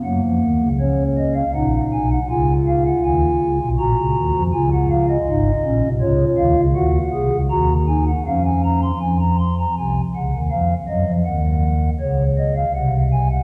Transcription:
<<
  \new Staff \with { instrumentName = "Pipe organ" } { \time 3/4 \key fis \major \tempo 4 = 80 << { fis''4 cis''8 dis''16 eis''16 fis''8 gis''16 fis''16 | gis''8 eis''16 fis''16 gis''4 ais''4 | gis''16 fis''16 eis''16 dis''4~ dis''16 cis''8 eis''8 | fis''4 ais''8 gis''16 fis''16 eis''16 gis''16 ais''16 bis''16 |
aes''16 ais''16 c'''16 ais''16 aes''8 fis''8 eis''8 dis''8 | fis''4 cis''8 dis''16 eis''16 fis''8 gis''16 fis''16 | } \\ { ais4 cis'4 dis'4 | eis'2 fis'4 | eis'4 dis'8 cis'8 eis'4 | fis'8 gis'8 fis'8 dis'8 cis'4 |
r2. | r2. | } >> }
  \new Staff \with { instrumentName = "Pipe organ" } { \clef bass \time 3/4 \key fis \major <fis, fis>16 <eis, eis>16 <dis, dis>16 <cis, cis>4~ <cis, cis>16 <ais,, ais,>8 <b,, b,>8 | <cis, cis>4 <dis, dis>8 <cis, cis>16 <b,, b,>16 <ais,, ais,>16 <cis, cis>16 <dis, dis>16 <eis, eis>16 | <cis, cis>4 <gis,, gis,>8 <ais,, ais,>16 <bis,, bis,>16 <cis, cis>8 <dis, dis>16 <cis, cis>16 | <dis, dis>8 <bis,, bis,>16 <cis, cis>16 <dis, dis>4 <eis, eis>4 |
<f, f>4 <c, c>8 <cis, cis>16 <ees, ees>16 <eis, eis>8 <fis, fis>16 <eis, eis>16 | <dis, dis>4 <cis, cis>4 <bis,, bis,>4 | }
>>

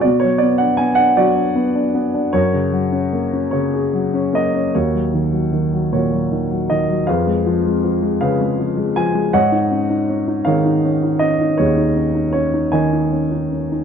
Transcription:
<<
  \new Staff \with { instrumentName = "Grand piano" } { \time 6/8 \key b \lydian \tempo 4. = 52 << { d''16 cis''16 d''16 fis''16 gis''16 fis''16 d''4. | cis''4. cis''4 dis''8 | \key ees \minor des''4. des''4 ees''8 | f''4. f''4 aes''8 |
ges''4. f''4 ees''8 | des''4 des''8 aes''4 r8 | } \\ { fis'4. fis'4. | ais'4. r4. | <ges' bes'>4. <ges' bes'>4. | <aes' ces''>4. <aes' ces''>4. |
<des'' ees''>4. <aes' des''>4. | aes'4. <des'' ees''>4. | } >> }
  \new Staff \with { instrumentName = "Grand piano" } { \time 6/8 \key b \lydian b,16 fis16 b16 d'16 b16 d'16 fis16 d'16 b16 d'16 b16 d'16 | fis,16 cis16 fis16 cis'16 ais16 cis'16 cis16 gis'16 fis16 cis'16 ais16 cis'16 | \key ees \minor ees,16 ges16 ees16 ges16 ees16 ges16 bes,16 ges16 ees16 ges16 ees16 ges16 | f,16 aes16 f16 aes16 f16 aes16 des16 aes16 f16 aes16 f16 aes16 |
aes,16 ees'16 des'16 ees'16 des'16 ees'16 ees16 ees'16 des'16 ees'16 des'16 ees'16 | ees,16 ees'16 des'16 ees'16 des'16 ees'16 ees16 ees'16 des'16 ees'16 des'16 ees'16 | }
>>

